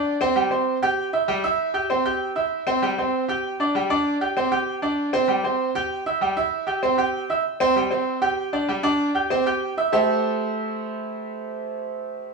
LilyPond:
\new Staff \with { instrumentName = "Grand piano" } { \time 4/4 \key g \mixolydian \tempo 4 = 194 <d' d'' d'''>8 <c' c'' c'''>8 <g g' g''>8 <c' c'' c'''>4 <g' g'' g'''>4 <e' e'' e'''>8 | <g g' g''>8 <e' e'' e'''>4 <g' g'' g'''>8 <c' c'' c'''>8 <g' g'' g'''>4 <e' e'' e'''>8~ | <e' e'' e'''>8 <c' c'' c'''>8 <g g' g''>8 <c' c'' c'''>4 <g' g'' g'''>4 <d' d'' d'''>8 | <g g' g''>8 <d' d'' d'''>4 <g' g'' g'''>8 <c' c'' c'''>8 <g' g'' g'''>4 <d' d'' d'''>8~ |
<d' d'' d'''>8 <c' c'' c'''>8 <g g' g''>8 <c' c'' c'''>4 <g' g'' g'''>4 <e' e'' e'''>8 | <g g' g''>8 <e' e'' e'''>4 <g' g'' g'''>8 <c' c'' c'''>8 <g' g'' g'''>4 <e' e'' e'''>8 | r8 <c' c'' c'''>8 <g g' g''>8 <c' c'' c'''>4 <g' g'' g'''>4 <d' d'' d'''>8 | <g g' g''>8 <d' d'' d'''>4 <g' g'' g'''>8 <c' c'' c'''>8 <g' g'' g'''>4 <e' e'' e'''>8 |
<a e' g' a' c'' e''>1~ | <a e' g' a' c'' e''>1 | }